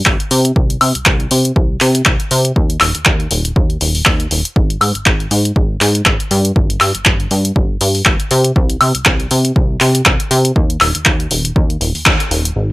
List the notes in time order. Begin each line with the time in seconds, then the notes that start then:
0.06 G1, kick, clap, high woodblock
0.20 closed hi-hat
0.31 C3, open hi-hat
0.45 closed hi-hat
0.56 C2, kick
0.70 closed hi-hat
0.81 C3, open hi-hat, high woodblock
0.95 C2, closed hi-hat
1.06 C2, kick, clap
1.20 closed hi-hat
1.31 C3, open hi-hat
1.45 closed hi-hat
1.56 C2, kick
1.81 C3, clap, open hi-hat
1.95 closed hi-hat
2.05 C2, kick, clap, high woodblock
2.20 closed hi-hat
2.31 C3, open hi-hat
2.45 closed hi-hat
2.56 D#2, kick
2.70 closed hi-hat
2.80 D#1, clap, open hi-hat, high woodblock
2.95 D#2, closed hi-hat
3.05 D#2, kick, clap
3.20 closed hi-hat
3.31 D#1, open hi-hat
3.45 closed hi-hat
3.56 D#2, kick
3.70 closed hi-hat
3.81 D#1, open hi-hat
3.95 open hi-hat
4.05 D#2, kick, clap, high woodblock
4.20 closed hi-hat
4.31 D#1, open hi-hat
4.45 closed hi-hat
4.56 G#1, kick
4.70 closed hi-hat
4.81 G#2, open hi-hat, high woodblock
4.95 G#1, closed hi-hat
5.06 G#1, kick, clap
5.20 closed hi-hat
5.31 G#2, open hi-hat
5.45 closed hi-hat
5.56 G#1, kick
5.81 G#2, clap, open hi-hat
5.95 closed hi-hat
6.06 G#1, kick, clap, high woodblock
6.20 closed hi-hat
6.31 G2, open hi-hat
6.45 closed hi-hat
6.56 G1, kick
6.70 closed hi-hat
6.80 G2, clap, open hi-hat, high woodblock
6.95 G1, closed hi-hat
7.05 G1, kick, clap
7.20 closed hi-hat
7.31 G2, open hi-hat
7.45 closed hi-hat
7.56 G1, kick
7.81 G2, open hi-hat
7.95 open hi-hat
8.05 G1, kick, clap, high woodblock
8.20 closed hi-hat
8.31 C3, open hi-hat
8.45 closed hi-hat
8.56 C2, kick
8.70 closed hi-hat
8.81 C3, open hi-hat, high woodblock
8.95 C2, closed hi-hat
9.05 C2, kick, clap
9.20 closed hi-hat
9.31 C3, open hi-hat
9.45 closed hi-hat
9.56 C2, kick
9.80 C3, clap, open hi-hat
9.95 closed hi-hat
10.06 C2, kick, clap, high woodblock
10.20 closed hi-hat
10.31 C3, open hi-hat
10.45 closed hi-hat
10.56 D#2, kick
10.70 closed hi-hat
10.81 D#1, clap, open hi-hat, high woodblock
10.95 D#2, closed hi-hat
11.05 D#2, kick, clap
11.20 closed hi-hat
11.31 D#1, open hi-hat
11.45 closed hi-hat
11.56 D#2, kick
11.70 closed hi-hat
11.81 D#1, open hi-hat
11.95 D#2, open hi-hat
12.06 D#2, kick, clap, high woodblock
12.20 closed hi-hat
12.31 D#1, open hi-hat
12.45 closed hi-hat
12.56 G#1